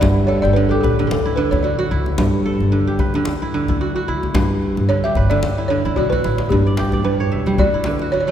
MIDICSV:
0, 0, Header, 1, 5, 480
1, 0, Start_track
1, 0, Tempo, 540541
1, 13, Time_signature, 4, 2, 24, 8
1, 7383, End_track
2, 0, Start_track
2, 0, Title_t, "Balafon"
2, 0, Program_c, 0, 12
2, 0, Note_on_c, 0, 74, 93
2, 239, Note_on_c, 0, 73, 84
2, 258, Note_off_c, 0, 74, 0
2, 374, Note_on_c, 0, 74, 96
2, 386, Note_off_c, 0, 73, 0
2, 474, Note_on_c, 0, 71, 78
2, 491, Note_off_c, 0, 74, 0
2, 614, Note_on_c, 0, 69, 80
2, 623, Note_off_c, 0, 71, 0
2, 716, Note_on_c, 0, 67, 79
2, 720, Note_off_c, 0, 69, 0
2, 952, Note_on_c, 0, 69, 80
2, 974, Note_off_c, 0, 67, 0
2, 1207, Note_on_c, 0, 71, 76
2, 1212, Note_off_c, 0, 69, 0
2, 1343, Note_on_c, 0, 73, 77
2, 1351, Note_off_c, 0, 71, 0
2, 1445, Note_on_c, 0, 74, 73
2, 1456, Note_off_c, 0, 73, 0
2, 2617, Note_off_c, 0, 74, 0
2, 4340, Note_on_c, 0, 73, 89
2, 4400, Note_off_c, 0, 73, 0
2, 4474, Note_on_c, 0, 76, 91
2, 4704, Note_on_c, 0, 74, 89
2, 4720, Note_off_c, 0, 76, 0
2, 5045, Note_on_c, 0, 73, 82
2, 5063, Note_off_c, 0, 74, 0
2, 5294, Note_on_c, 0, 74, 79
2, 5295, Note_on_c, 0, 66, 79
2, 5298, Note_off_c, 0, 73, 0
2, 5415, Note_on_c, 0, 71, 75
2, 5433, Note_off_c, 0, 74, 0
2, 5743, Note_off_c, 0, 71, 0
2, 5765, Note_on_c, 0, 67, 75
2, 5789, Note_off_c, 0, 66, 0
2, 6259, Note_on_c, 0, 71, 84
2, 6263, Note_off_c, 0, 67, 0
2, 6701, Note_off_c, 0, 71, 0
2, 6742, Note_on_c, 0, 74, 96
2, 7210, Note_on_c, 0, 73, 88
2, 7230, Note_off_c, 0, 74, 0
2, 7274, Note_off_c, 0, 73, 0
2, 7285, Note_on_c, 0, 73, 69
2, 7336, Note_off_c, 0, 73, 0
2, 7347, Note_on_c, 0, 73, 75
2, 7383, Note_off_c, 0, 73, 0
2, 7383, End_track
3, 0, Start_track
3, 0, Title_t, "Kora"
3, 0, Program_c, 1, 46
3, 0, Note_on_c, 1, 64, 60
3, 8, Note_on_c, 1, 43, 90
3, 250, Note_on_c, 1, 69, 65
3, 383, Note_on_c, 1, 79, 52
3, 499, Note_on_c, 1, 50, 76
3, 629, Note_on_c, 1, 67, 66
3, 741, Note_on_c, 1, 71, 65
3, 870, Note_off_c, 1, 50, 0
3, 881, Note_on_c, 1, 50, 80
3, 1021, Note_off_c, 1, 43, 0
3, 1021, Note_off_c, 1, 50, 0
3, 1110, Note_off_c, 1, 64, 0
3, 1114, Note_on_c, 1, 64, 59
3, 1210, Note_off_c, 1, 79, 0
3, 1219, Note_on_c, 1, 50, 83
3, 1346, Note_off_c, 1, 64, 0
3, 1349, Note_on_c, 1, 64, 56
3, 1420, Note_off_c, 1, 69, 0
3, 1455, Note_on_c, 1, 66, 57
3, 1509, Note_off_c, 1, 67, 0
3, 1583, Note_off_c, 1, 66, 0
3, 1586, Note_on_c, 1, 66, 77
3, 1692, Note_off_c, 1, 64, 0
3, 1696, Note_on_c, 1, 64, 66
3, 1832, Note_off_c, 1, 71, 0
3, 1935, Note_on_c, 1, 43, 82
3, 1983, Note_off_c, 1, 50, 0
3, 1988, Note_off_c, 1, 66, 0
3, 2180, Note_on_c, 1, 69, 58
3, 2415, Note_on_c, 1, 50, 69
3, 2552, Note_on_c, 1, 67, 63
3, 2659, Note_on_c, 1, 71, 65
3, 2788, Note_off_c, 1, 50, 0
3, 2798, Note_on_c, 1, 50, 85
3, 2944, Note_off_c, 1, 43, 0
3, 2944, Note_off_c, 1, 50, 0
3, 3033, Note_off_c, 1, 64, 0
3, 3037, Note_on_c, 1, 64, 60
3, 3144, Note_on_c, 1, 50, 81
3, 3272, Note_off_c, 1, 64, 0
3, 3275, Note_on_c, 1, 64, 57
3, 3350, Note_off_c, 1, 69, 0
3, 3382, Note_on_c, 1, 66, 64
3, 3435, Note_off_c, 1, 67, 0
3, 3510, Note_off_c, 1, 66, 0
3, 3513, Note_on_c, 1, 66, 79
3, 3620, Note_off_c, 1, 64, 0
3, 3623, Note_on_c, 1, 64, 72
3, 3751, Note_off_c, 1, 71, 0
3, 3856, Note_on_c, 1, 43, 79
3, 3903, Note_off_c, 1, 50, 0
3, 3910, Note_off_c, 1, 66, 0
3, 4346, Note_on_c, 1, 50, 65
3, 4483, Note_on_c, 1, 67, 63
3, 4586, Note_on_c, 1, 71, 65
3, 4704, Note_off_c, 1, 50, 0
3, 4714, Note_on_c, 1, 50, 83
3, 4862, Note_off_c, 1, 43, 0
3, 4862, Note_off_c, 1, 50, 0
3, 4952, Note_off_c, 1, 64, 0
3, 4956, Note_on_c, 1, 64, 58
3, 5064, Note_on_c, 1, 50, 81
3, 5193, Note_off_c, 1, 64, 0
3, 5196, Note_on_c, 1, 64, 59
3, 5305, Note_on_c, 1, 66, 54
3, 5358, Note_off_c, 1, 67, 0
3, 5434, Note_off_c, 1, 66, 0
3, 5437, Note_on_c, 1, 66, 76
3, 5541, Note_off_c, 1, 64, 0
3, 5545, Note_on_c, 1, 64, 65
3, 5678, Note_off_c, 1, 71, 0
3, 5788, Note_on_c, 1, 43, 78
3, 5820, Note_off_c, 1, 50, 0
3, 5842, Note_off_c, 1, 66, 0
3, 5919, Note_on_c, 1, 74, 60
3, 6027, Note_on_c, 1, 67, 60
3, 6153, Note_off_c, 1, 74, 0
3, 6156, Note_on_c, 1, 74, 52
3, 6244, Note_off_c, 1, 43, 0
3, 6255, Note_on_c, 1, 43, 64
3, 6394, Note_on_c, 1, 73, 57
3, 6496, Note_on_c, 1, 76, 59
3, 6631, Note_on_c, 1, 55, 76
3, 6734, Note_on_c, 1, 66, 65
3, 6777, Note_off_c, 1, 43, 0
3, 6777, Note_off_c, 1, 55, 0
3, 6787, Note_off_c, 1, 67, 0
3, 6869, Note_off_c, 1, 64, 0
3, 6873, Note_on_c, 1, 64, 56
3, 6978, Note_on_c, 1, 50, 72
3, 7032, Note_off_c, 1, 73, 0
3, 7114, Note_off_c, 1, 66, 0
3, 7118, Note_on_c, 1, 66, 61
3, 7140, Note_off_c, 1, 74, 0
3, 7219, Note_off_c, 1, 66, 0
3, 7223, Note_on_c, 1, 66, 62
3, 7351, Note_on_c, 1, 57, 77
3, 7383, Note_off_c, 1, 50, 0
3, 7383, Note_off_c, 1, 57, 0
3, 7383, Note_off_c, 1, 64, 0
3, 7383, Note_off_c, 1, 66, 0
3, 7383, Note_off_c, 1, 76, 0
3, 7383, End_track
4, 0, Start_track
4, 0, Title_t, "Upright bass"
4, 0, Program_c, 2, 32
4, 15, Note_on_c, 2, 31, 83
4, 359, Note_off_c, 2, 31, 0
4, 388, Note_on_c, 2, 31, 81
4, 707, Note_off_c, 2, 31, 0
4, 738, Note_on_c, 2, 33, 81
4, 958, Note_off_c, 2, 33, 0
4, 982, Note_on_c, 2, 38, 91
4, 1324, Note_off_c, 2, 38, 0
4, 1351, Note_on_c, 2, 38, 91
4, 1670, Note_off_c, 2, 38, 0
4, 1700, Note_on_c, 2, 37, 98
4, 1920, Note_off_c, 2, 37, 0
4, 1938, Note_on_c, 2, 31, 89
4, 2283, Note_off_c, 2, 31, 0
4, 2313, Note_on_c, 2, 31, 79
4, 2631, Note_off_c, 2, 31, 0
4, 2656, Note_on_c, 2, 37, 80
4, 2878, Note_off_c, 2, 37, 0
4, 2898, Note_on_c, 2, 38, 86
4, 3243, Note_off_c, 2, 38, 0
4, 3280, Note_on_c, 2, 38, 94
4, 3595, Note_off_c, 2, 38, 0
4, 3626, Note_on_c, 2, 37, 88
4, 3843, Note_off_c, 2, 37, 0
4, 3868, Note_on_c, 2, 31, 90
4, 4207, Note_off_c, 2, 31, 0
4, 4243, Note_on_c, 2, 31, 81
4, 4555, Note_off_c, 2, 31, 0
4, 4588, Note_on_c, 2, 31, 79
4, 4803, Note_off_c, 2, 31, 0
4, 4828, Note_on_c, 2, 38, 89
4, 5167, Note_off_c, 2, 38, 0
4, 5200, Note_on_c, 2, 38, 92
4, 5293, Note_off_c, 2, 38, 0
4, 5306, Note_on_c, 2, 35, 73
4, 5517, Note_off_c, 2, 35, 0
4, 5550, Note_on_c, 2, 33, 76
4, 5759, Note_off_c, 2, 33, 0
4, 5786, Note_on_c, 2, 31, 92
4, 6124, Note_off_c, 2, 31, 0
4, 6158, Note_on_c, 2, 43, 78
4, 6470, Note_off_c, 2, 43, 0
4, 6498, Note_on_c, 2, 28, 79
4, 6716, Note_off_c, 2, 28, 0
4, 6735, Note_on_c, 2, 38, 91
4, 6857, Note_off_c, 2, 38, 0
4, 6870, Note_on_c, 2, 38, 75
4, 7383, Note_off_c, 2, 38, 0
4, 7383, End_track
5, 0, Start_track
5, 0, Title_t, "Djembe"
5, 21, Note_on_c, 9, 62, 65
5, 21, Note_on_c, 9, 64, 75
5, 110, Note_off_c, 9, 62, 0
5, 110, Note_off_c, 9, 64, 0
5, 398, Note_on_c, 9, 63, 50
5, 487, Note_off_c, 9, 63, 0
5, 505, Note_on_c, 9, 62, 22
5, 594, Note_off_c, 9, 62, 0
5, 747, Note_on_c, 9, 62, 22
5, 747, Note_on_c, 9, 64, 69
5, 836, Note_off_c, 9, 62, 0
5, 836, Note_off_c, 9, 64, 0
5, 885, Note_on_c, 9, 62, 19
5, 885, Note_on_c, 9, 63, 49
5, 973, Note_off_c, 9, 62, 0
5, 973, Note_off_c, 9, 63, 0
5, 987, Note_on_c, 9, 62, 64
5, 1076, Note_off_c, 9, 62, 0
5, 1355, Note_on_c, 9, 63, 47
5, 1355, Note_on_c, 9, 64, 51
5, 1444, Note_off_c, 9, 63, 0
5, 1444, Note_off_c, 9, 64, 0
5, 1462, Note_on_c, 9, 62, 20
5, 1550, Note_off_c, 9, 62, 0
5, 1831, Note_on_c, 9, 63, 51
5, 1919, Note_off_c, 9, 63, 0
5, 1936, Note_on_c, 9, 62, 66
5, 1936, Note_on_c, 9, 64, 68
5, 2025, Note_off_c, 9, 62, 0
5, 2025, Note_off_c, 9, 64, 0
5, 2313, Note_on_c, 9, 62, 19
5, 2313, Note_on_c, 9, 63, 46
5, 2402, Note_off_c, 9, 62, 0
5, 2402, Note_off_c, 9, 63, 0
5, 2424, Note_on_c, 9, 62, 24
5, 2513, Note_off_c, 9, 62, 0
5, 2655, Note_on_c, 9, 62, 21
5, 2655, Note_on_c, 9, 64, 72
5, 2744, Note_off_c, 9, 62, 0
5, 2744, Note_off_c, 9, 64, 0
5, 2788, Note_on_c, 9, 62, 21
5, 2788, Note_on_c, 9, 63, 52
5, 2877, Note_off_c, 9, 62, 0
5, 2877, Note_off_c, 9, 63, 0
5, 2888, Note_on_c, 9, 62, 64
5, 2977, Note_off_c, 9, 62, 0
5, 3271, Note_on_c, 9, 63, 55
5, 3271, Note_on_c, 9, 64, 49
5, 3360, Note_off_c, 9, 63, 0
5, 3360, Note_off_c, 9, 64, 0
5, 3379, Note_on_c, 9, 62, 19
5, 3468, Note_off_c, 9, 62, 0
5, 3757, Note_on_c, 9, 63, 61
5, 3846, Note_off_c, 9, 63, 0
5, 3860, Note_on_c, 9, 62, 74
5, 3860, Note_on_c, 9, 64, 73
5, 3949, Note_off_c, 9, 62, 0
5, 3949, Note_off_c, 9, 64, 0
5, 4108, Note_on_c, 9, 62, 23
5, 4197, Note_off_c, 9, 62, 0
5, 4238, Note_on_c, 9, 63, 61
5, 4327, Note_off_c, 9, 63, 0
5, 4343, Note_on_c, 9, 62, 24
5, 4431, Note_off_c, 9, 62, 0
5, 4576, Note_on_c, 9, 62, 25
5, 4576, Note_on_c, 9, 64, 68
5, 4665, Note_off_c, 9, 62, 0
5, 4665, Note_off_c, 9, 64, 0
5, 4713, Note_on_c, 9, 62, 21
5, 4713, Note_on_c, 9, 63, 62
5, 4802, Note_off_c, 9, 62, 0
5, 4802, Note_off_c, 9, 63, 0
5, 4819, Note_on_c, 9, 62, 65
5, 4908, Note_off_c, 9, 62, 0
5, 5053, Note_on_c, 9, 62, 24
5, 5142, Note_off_c, 9, 62, 0
5, 5194, Note_on_c, 9, 64, 38
5, 5283, Note_off_c, 9, 64, 0
5, 5304, Note_on_c, 9, 64, 44
5, 5393, Note_off_c, 9, 64, 0
5, 5442, Note_on_c, 9, 64, 52
5, 5531, Note_off_c, 9, 64, 0
5, 5544, Note_on_c, 9, 62, 50
5, 5633, Note_off_c, 9, 62, 0
5, 5669, Note_on_c, 9, 62, 61
5, 5757, Note_off_c, 9, 62, 0
5, 5775, Note_on_c, 9, 64, 63
5, 5863, Note_off_c, 9, 64, 0
5, 6014, Note_on_c, 9, 62, 64
5, 6103, Note_off_c, 9, 62, 0
5, 6144, Note_on_c, 9, 63, 51
5, 6233, Note_off_c, 9, 63, 0
5, 6247, Note_on_c, 9, 62, 24
5, 6336, Note_off_c, 9, 62, 0
5, 6627, Note_on_c, 9, 63, 57
5, 6715, Note_off_c, 9, 63, 0
5, 6734, Note_on_c, 9, 64, 69
5, 6823, Note_off_c, 9, 64, 0
5, 6862, Note_on_c, 9, 62, 23
5, 6950, Note_off_c, 9, 62, 0
5, 6961, Note_on_c, 9, 62, 64
5, 7049, Note_off_c, 9, 62, 0
5, 7098, Note_on_c, 9, 63, 51
5, 7187, Note_off_c, 9, 63, 0
5, 7199, Note_on_c, 9, 62, 19
5, 7288, Note_off_c, 9, 62, 0
5, 7383, End_track
0, 0, End_of_file